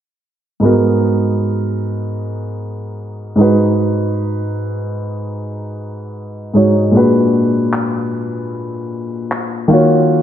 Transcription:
0.60 grand piano G#2 G#3 B3
0.64 grand piano F#4 A#4
3.36 grand piano G#2 G#3 D#4
3.40 grand piano F#4 B4
6.54 grand piano G#2 G#3 D#4 F#4 C#5
6.92 grand piano A#2 G#3 D4
6.96 grand piano F#4 B4
7.73 clap
9.32 clap
9.68 grand piano D#3 A#3 F4
9.72 grand piano F#4 C#5

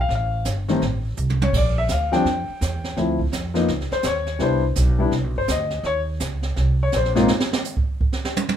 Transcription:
0.01 grand piano F5
0.09 upright bass A1, brush sweep, snare
0.15 grand piano F5
0.45 upright bass G1, snare, hi-hat pedal
0.68 grand piano D#3 G3 A3 C4, snare
0.81 upright bass A1, brush sweep, snare
1.17 upright bass C2, hi-hat pedal
1.30 high tom
1.42 grand piano C#5, high tom
1.53 upright bass A#1, grand piano D5, brush sweep, kick, snare, crash
1.78 grand piano E5
1.88 upright bass D2, grand piano F5, snare, hi-hat pedal
2.12 grand piano F3 G3 C4 D4 G5, snare
2.25 upright bass F2, brush sweep, snare
2.49 muted upright bass stroke
2.61 upright bass E2, snare, hi-hat pedal
2.84 snare
2.96 upright bass D2, grand piano F3 A3 C4 E4, brush sweep, snare
3.19 kick
3.32 upright bass F2, snare, hi-hat pedal
3.54 grand piano F3 A#3 B3 D#4, snare
3.68 upright bass C#2, brush sweep, snare
3.81 snare
3.92 grand piano C5, muted upright bass stroke, snare
4.03 upright bass D#2, grand piano C#5, snare, hi-hat pedal
4.27 snare
4.39 upright bass C2, grand piano G3 B3 D4 E4 C5, brush sweep, snare
4.75 upright bass B1, snare, hi-hat pedal
4.98 grand piano G3 B3 D4 E4
5.11 upright bass C2, brush sweep, snare
5.24 upright bass B1
5.36 upright bass G1, grand piano C5
5.48 upright bass D2, grand piano D#5, snare, hi-hat pedal
5.70 snare
5.83 upright bass D#2, grand piano C#5, brush sweep, snare
6.20 upright bass C#2, snare, hi-hat pedal
6.42 snare
6.56 upright bass C2, brush sweep, snare
6.83 grand piano C#5
6.92 upright bass A#1, snare, hi-hat pedal
6.96 grand piano C5
7.05 snare
7.15 grand piano G#2 A#3 C4 D#4 F4, snare
7.28 snare
7.40 snare
7.53 snare
7.64 hi-hat pedal
7.77 kick
8.01 kick
8.13 snare
8.25 snare
8.36 hi-hat pedal, high tom
8.49 high tom

